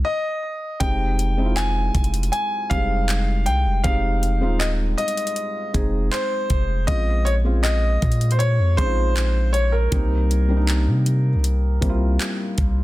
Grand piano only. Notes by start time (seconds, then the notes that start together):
0.05 D#5
0.80 G5
1.56 G#5
2.32 G#5
2.70 F5
3.46 G5
3.84 F5
4.59 D#5
4.98 D#5
6.11 C5
6.87 D#5
7.25 C#5
7.63 D#5
8.32 C5
8.39 C#5
8.77 C5
9.53 C#5
9.72 A#4